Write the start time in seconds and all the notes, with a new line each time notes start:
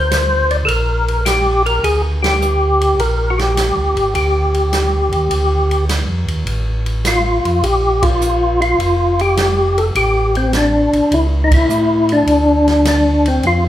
Already playing: D2 C5
0.11 snare, hi-hat pedal, ride
0.51 D5, ride
0.65 A#1 A4 A#4, ride
1.08 ride
1.25 G4, snare, hi-hat pedal, ride
1.66 A#4, ride
1.83 D2 G#4, ride
2.22 G4, snare, ride
2.42 hi-hat pedal
2.81 ride
2.98 A#1 A#4, ride
3.30 F#4
3.38 G4, snare, ride
3.57 snare, hi-hat pedal, ride
3.76 D2
3.96 G#1, ride
4.15 D2 G4, ride
4.54 ride
4.73 snare, hi-hat pedal, ride
5.12 D#2, ride
5.30 D2, ride
5.71 ride
5.89 snare, hi-hat pedal, ride
6.07 F2
6.26 D#2, ride
6.46 A1, ride
6.86 ride
7.05 F4, snare, hi-hat pedal, ride
7.45 F2, ride
7.62 A#1 G4, ride
8.02 F4, kick, ride
8.21 hi-hat pedal
8.62 F4, ride
8.79 F1, ride
9.19 G4, ride
9.37 snare, hi-hat pedal, ride
9.78 A4, ride
9.95 A1 G4, ride
10.35 C4, ride
10.53 D4, snare, hi-hat pedal, ride
10.93 A1, ride
11.11 C#2 E4, ride
11.44 D#4
11.51 E4, kick, ride
11.69 A2, hi-hat pedal
12.09 D4, ride
12.26 D2, ride
12.68 snare, ride
12.85 D4, snare, hi-hat pedal, ride
13.25 C4, ride
13.43 F2 F4, ride